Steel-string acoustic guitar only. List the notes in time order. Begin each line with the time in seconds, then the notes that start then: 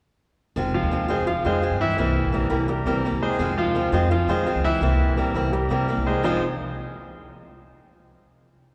0.56 C3 D#3 G#3 C4 F4
0.91 D#3 G#3 C4 F4
1.08 D#3 G#3 C4 F4
1.27 muted steel-string acoustic guitar stroke
1.45 D#3 G#3 C4 F4
1.62 D#3 G#3 C4 F4
1.97 C3 E3 A#3 C4 E4
2.32 E3 A#3 C4 E4
2.50 E3 A#3 C4 E4
2.68 muted steel-string acoustic guitar stroke
2.86 E3 A#3 C4 E4
3.05 E3 A#3 C4 E4
3.39 C3 D#3 G#3 C4 F4
3.75 D#3 G#3 C4 F4
3.92 D#3 G#3 C4 F4
4.11 muted steel-string acoustic guitar stroke
4.29 D#3 G#3 C4 F4
4.46 D#3 G#3 C4 F4
4.81 C3 E3 A#3 C4 E4
5.17 E3 A#3 C4 E4
5.35 E3 A#3 C4 E4
5.53 muted steel-string acoustic guitar stroke
5.70 E3 A#3 C4 E4
5.88 E3 A#3 C4 E4
6.23 F2 C3 D#3 G#3 C4 F4